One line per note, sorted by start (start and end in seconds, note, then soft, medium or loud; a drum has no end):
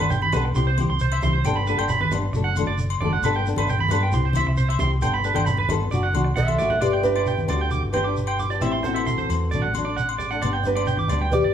0.00 0.29 G1 medium
0.00 0.14 B3 soft
0.00 0.13 D4 medium
0.00 0.12 A4 medium
0.00 low agogo medium
0.10 0.21 G5 medium
0.10 low conga medium
0.10 shekere loud
0.22 0.32 B5 medium
0.22 high conga medium
0.32 0.53 B1 loud
0.32 0.46 G3 medium
0.32 0.46 B3 medium
0.32 0.47 D4 medium
0.32 0.47 A4 medium
0.32 0.44 B4 medium
0.32 low conga medium
0.32 low agogo medium
0.32 shekere medium
0.45 muted clean electric guitar stroke medium
0.55 0.86 C2 loud
0.55 0.69 G3 medium
0.55 0.69 C4 medium
0.55 0.69 E4 medium
0.55 0.69 G4 medium
0.55 0.66 C6 medium
0.55 shekere loud
0.67 0.77 C5 medium
0.77 0.90 G3 medium
0.77 0.91 C4 medium
0.77 0.92 E4 medium
0.77 0.92 G4 medium
0.77 high conga medium
0.77 low agogo medium
0.77 shekere medium
0.89 1.19 C2 medium
0.89 1.00 C6 medium
0.99 1.11 C5 medium
0.99 shekere medium
1.12 1.22 E5 medium
1.12 low agogo medium
1.22 1.42 C2 medium
1.22 1.36 G3 medium
1.22 1.36 C4 medium
1.22 1.37 E4 medium
1.22 1.37 G4 medium
1.22 1.33 C6 medium
1.22 high conga medium
1.22 low conga medium
1.22 shekere medium
1.33 1.44 C5 medium
1.44 1.75 G1 loud
1.44 1.58 G3 medium
1.44 1.59 B3 medium
1.44 1.59 D4 medium
1.44 1.59 A4 medium
1.44 1.56 G5 medium
1.44 low agogo medium
1.44 shekere loud
1.56 1.66 B5 medium
1.67 1.78 G3 medium
1.67 1.79 B3 medium
1.67 1.78 D4 medium
1.67 1.76 A4 medium
1.67 1.78 B4 medium
1.67 shekere medium
1.78 2.08 G1 medium
1.78 1.93 B3 soft
1.78 1.92 D4 medium
1.78 1.91 A4 medium
1.78 1.89 G5 medium
1.78 low agogo medium
1.89 2.00 B5 medium
1.89 low conga medium
1.89 shekere loud
2.01 2.11 B4 medium
2.01 high conga medium
2.10 2.31 G1 medium
2.10 2.25 G3 medium
2.10 2.25 B3 medium
2.10 2.26 D4 medium
2.10 low conga medium
2.10 low agogo medium
2.10 shekere medium
2.33 2.64 F#1 loud
2.33 2.47 F#3 medium
2.33 2.48 A3 medium
2.33 2.48 D4 medium
2.33 2.49 A4 medium
2.33 muted clean electric guitar stroke medium
2.33 shekere loud
2.44 2.55 F#5 medium
2.56 2.70 F#3 medium
2.56 2.71 A3 medium
2.56 2.71 D4 medium
2.56 2.71 A4 medium
2.56 high conga medium
2.56 low agogo medium
2.56 shekere medium
2.67 2.98 F#1 loud
2.67 2.78 D5 medium
2.78 shekere medium
2.90 low agogo medium
3.00 3.21 F#1 medium
3.00 3.15 F#3 medium
3.00 3.15 A3 medium
3.00 3.16 D4 medium
3.00 3.11 D5 medium
3.00 high conga medium
3.00 low conga medium
3.04 3.16 A4 medium
3.13 3.23 F#5 medium
3.22 3.53 G1 loud
3.22 3.37 G3 medium
3.22 3.37 B3 medium
3.22 3.38 D4 medium
3.22 3.38 A4 medium
3.22 3.35 B4 medium
3.22 low agogo medium
3.22 shekere medium
3.36 3.46 G5 medium
3.46 3.58 B3 medium
3.46 3.57 D4 medium
3.46 3.56 A4 medium
3.46 muted nylon-string guitar stroke medium
3.46 shekere medium
3.56 3.87 G1 medium
3.56 3.72 B3 soft
3.56 3.71 D4 medium
3.56 3.70 A4 medium
3.56 3.68 B4 medium
3.56 high conga medium
3.56 low agogo medium
3.67 3.80 G5 medium
3.67 low conga medium
3.67 shekere medium
3.79 3.90 B5 medium
3.79 high conga medium
3.88 4.11 G2 medium
3.88 4.04 G3 medium
3.88 4.04 B3 medium
3.88 4.05 D4 medium
3.88 4.01 B4 medium
3.88 low conga medium
3.88 low agogo medium
3.88 shekere medium
3.92 4.05 A4 medium
4.03 4.13 G5 medium
4.11 4.43 C2 loud
4.11 4.26 C4 medium
4.11 4.26 E4 medium
4.11 4.26 G4 medium
4.11 4.24 C6 medium
4.11 shekere medium
4.25 4.35 C5 medium
4.33 4.48 C4 medium
4.33 4.49 E4 medium
4.33 4.50 G4 medium
4.33 4.47 E5 medium
4.33 high conga medium
4.33 low agogo medium
4.33 shekere medium
4.47 4.77 C2 loud
4.47 muted clean electric guitar stroke medium
4.57 4.68 C5 medium
4.57 shekere medium
4.69 4.79 E5 medium
4.69 low agogo medium
4.79 5.00 C2 medium
4.79 4.93 C4 medium
4.79 4.94 E4 medium
4.79 4.95 G4 medium
4.79 4.91 C6 medium
4.79 high conga medium
4.79 low conga medium
4.79 shekere medium
5.01 5.33 G1 loud
5.01 5.15 G3 medium
5.01 5.16 B3 medium
5.01 5.16 D4 medium
5.01 5.16 A4 medium
5.01 5.13 G5 medium
5.01 low agogo medium
5.01 shekere loud
5.14 5.24 B5 medium
5.23 5.35 G3 medium
5.23 5.34 D4 medium
5.23 5.33 A4 medium
5.23 5.35 B4 medium
5.23 muted nylon-string guitar stroke medium
5.23 shekere medium
5.34 5.66 G1 medium
5.34 5.50 B3 medium
5.34 5.49 D4 medium
5.34 5.48 A4 medium
5.34 5.46 G5 medium
5.34 high conga medium
5.34 low agogo medium
5.46 5.57 B5 medium
5.46 low conga medium
5.46 shekere loud
5.57 5.69 B4 medium
5.57 high conga medium
5.69 5.89 G1 loud
5.69 5.83 G3 medium
5.69 5.83 B3 medium
5.69 5.84 A4 medium
5.69 muted nylon-string guitar stroke medium
5.69 high conga medium
5.69 low conga medium
5.69 low agogo medium
5.69 shekere medium
5.91 6.12 F#1 loud
5.91 6.06 D4 medium
5.91 6.06 F#4 medium
5.91 6.02 D5 medium
5.91 muted nylon-string guitar stroke medium
5.91 shekere medium
6.03 6.14 F#5 medium
6.13 6.34 C2 medium
6.13 6.27 A3 medium
6.13 6.28 D4 medium
6.13 6.29 F#4 medium
6.13 high conga medium
6.13 low agogo medium
6.13 shekere medium
6.24 muted clean electric guitar stroke medium
6.36 6.57 B1 medium
6.36 6.79 A4 medium
6.36 6.78 E5 loud
6.36 6.47 F#5 medium
6.36 high conga medium
6.36 shekere medium
6.48 high conga medium
6.48 low agogo medium
6.58 6.80 A1 medium
6.58 6.73 A3 medium
6.58 6.73 D4 medium
6.58 6.74 F#4 medium
6.58 6.70 D5 loud
6.58 low conga medium
6.58 shekere medium
6.70 6.81 F#5 medium
6.70 low conga medium
6.81 7.45 G1 medium
6.81 6.96 B3 medium
6.81 7.03 G4 medium
6.81 6.97 G4 medium
6.81 7.02 B4 medium
6.81 6.92 D5 medium
6.81 7.03 D5 medium
6.81 muted nylon-string guitar stroke medium
6.81 low agogo medium
6.81 shekere medium
6.93 7.04 G5 medium
7.03 7.15 B3 medium
7.03 7.47 D4 medium
7.03 7.16 D4 medium
7.03 7.46 G4 medium
7.03 7.14 G4 medium
7.03 7.45 B4 medium
7.03 low conga medium
7.03 shekere medium
7.15 7.30 D4 soft
7.15 7.29 G4 soft
7.15 7.26 D5 medium
7.15 low agogo medium
7.26 7.38 G5 medium
7.26 shekere medium
7.38 high conga medium
7.38 shekere soft
7.48 7.80 D2 medium
7.48 7.62 B3 medium
7.48 7.63 D4 medium
7.48 7.91 D4 medium
7.48 7.91 F#4 medium
7.48 7.63 G4 medium
7.48 7.92 A4 medium
7.48 7.60 D5 medium
7.48 low conga medium
7.48 low agogo medium
7.48 shekere medium
7.61 7.71 G5 medium
7.71 7.82 D6 medium
7.71 high conga medium
7.71 shekere medium
7.83 8.57 G1 medium
7.93 8.05 B3 medium
7.93 8.05 D4 medium
7.93 8.58 D4 medium
7.93 8.57 G4 medium
7.93 8.03 G4 medium
7.93 8.61 B4 medium
7.93 8.05 G5 medium
7.93 high conga medium
7.93 low agogo medium
7.93 shekere medium
8.04 8.20 D4 soft
8.04 8.18 G4 soft
8.04 8.15 D6 medium
8.17 shekere medium
8.27 8.38 G5 medium
8.27 low agogo medium
8.39 8.50 D6 medium
8.39 low conga medium
8.39 shekere medium
8.50 8.63 D4 soft
8.50 8.61 G4 medium
8.50 8.61 D5 medium
8.50 shekere soft
8.61 9.25 A1 medium
8.61 8.75 E3 medium
8.61 8.75 C4 medium
8.61 8.83 C4 medium
8.61 8.83 E4 medium
8.61 8.76 E4 medium
8.61 8.84 G4 medium
8.61 8.72 E5 medium
8.61 low agogo medium
8.61 shekere medium
8.72 8.83 C6 medium
8.83 8.96 E3 medium
8.83 9.70 F#4 medium
8.83 9.70 A4 medium
8.83 8.94 C5 medium
8.83 low conga medium
8.83 shekere medium
8.87 8.97 C4 medium
8.87 9.72 C4 medium
8.87 8.95 E4 medium
8.94 9.09 E4 soft
8.94 9.05 E5 medium
8.94 low agogo medium
9.00 muted nylon-string guitar stroke soft
9.06 9.17 C6 medium
9.06 shekere medium
9.18 9.28 C5 medium
9.18 high conga medium
9.18 shekere soft
9.29 9.50 E2 medium
9.29 9.44 E3 medium
9.29 9.44 C4 medium
9.29 low agogo medium
9.29 shekere medium
9.51 9.62 A1 medium
9.51 9.66 F#3 medium
9.51 9.66 A3 medium
9.51 9.67 D4 medium
9.51 9.62 D5 medium
9.51 high conga medium
9.51 shekere medium
9.62 10.38 A1 medium
9.62 9.73 F#5 medium
9.74 9.86 F#3 medium
9.74 9.85 D4 medium
9.74 high conga medium
9.74 low agogo medium
9.74 shekere medium
9.85 9.99 D4 medium
9.85 9.96 D5 medium
9.89 10.01 A3 soft
9.96 10.07 F#5 medium
9.96 shekere medium
10.09 low agogo medium
10.18 10.30 D5 medium
10.18 low conga medium
10.18 shekere medium
10.30 10.43 D4 medium
10.30 10.41 F#5 medium
10.30 shekere soft
10.35 10.43 A3 soft
10.42 11.06 G1 medium
10.42 10.56 G3 medium
10.42 10.56 B3 medium
10.42 10.57 D4 medium
10.42 10.53 D5 medium
10.42 low agogo medium
10.42 shekere medium
10.53 10.64 G5 medium
10.63 10.75 G3 medium
10.63 10.76 B3 medium
10.63 10.75 D4 medium
10.63 11.28 G4 medium
10.63 11.31 B4 loud
10.63 low conga medium
10.63 shekere medium
10.68 11.30 D4 medium
10.76 10.90 B3 soft
10.76 10.89 D4 medium
10.76 10.86 D5 medium
10.76 low agogo medium
10.87 10.98 G5 medium
10.87 shekere medium
10.97 11.09 D6 medium
10.97 high conga medium
10.97 shekere soft
11.08 11.40 D2 medium
11.08 11.23 G3 medium
11.08 11.24 B3 medium
11.08 11.24 D4 medium
11.08 11.20 D5 medium
11.08 low conga medium
11.08 low agogo medium
11.08 shekere medium
11.21 11.32 G5 medium
11.32 11.54 G4 medium
11.32 11.54 B4 medium
11.32 11.54 D5 loud
11.32 11.44 D6 medium
11.32 high conga medium
11.32 shekere medium
11.43 11.54 G1 medium
11.43 11.54 D5 medium